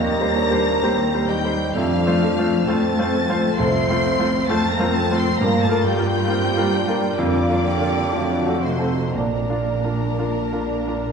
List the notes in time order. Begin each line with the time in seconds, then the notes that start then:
Already playing: D#2 G3 A#3 C4 D#4 A#4 A#5 A#6
0.20 G3 G4 C5
0.35 C4 D4 G4
0.51 G3 G4 C5
0.81 D#2 G3 C4 G4 C5
1.14 G3 G4 C5
1.28 G3 C4 D#4 G4 G5 G6
1.44 G3 G4 C5
1.74 F2 F3 A3 C4 D4 F4 A4 F5 F6
2.07 A3 F4 C5
2.21 C4 A4
2.39 A3 F4 C5
2.66 F2 A3 C4 F4 A4 C5 A5 A6
2.99 A3 F4 C5
3.12 C4 A4
3.29 A3 F4 C5
3.57 C2 F2 F3 A3 C4 A4 C5 C6 C7
3.90 A3 F4 C5
4.05 C4 A4
4.19 A3 F4 C5
4.48 F2 A3 C4 F4 A4 C5 A5 A6
4.71 A#3 A#4 A#5 A#6
4.79 A3 F4 C5
4.93 A3 C4 A4 A5 A6
5.11 A3 F4 C5
5.17 C4 C5 C6 C7
5.39 G2 F3 A#3 F4 A#4 A#5 A#6
5.62 A3 A4 A5 A6
5.70 A#3 F4 A#4
5.85 G3 G4 G5 G6
5.98 A#3 F4 A#4
6.27 A#3 C4 F4 A#4
6.57 A#3 F4 A#4
6.74 D4
6.88 A#3 F4 A#4
7.18 F2 D3 F3 A#3 D4 F4 D5 D6
7.49 A#3 F4 A#4
7.67 G4
7.80 A#3 F4 A#4
8.13 F2 F#3 A3 F4 F#4
8.46 C4 F#4 A4
8.62 C3 C4 D#4 C5 C6
8.79 C4 F#4 A4
9.14 A#1 A#2 A#3 D4 A#4 A#5
9.18 F3
9.50 D4 F4 A#4
9.84 D4 F4 A#4
10.18 D4 F4 A#4
10.52 D4 F4 A#4
10.87 D4 F4 A#4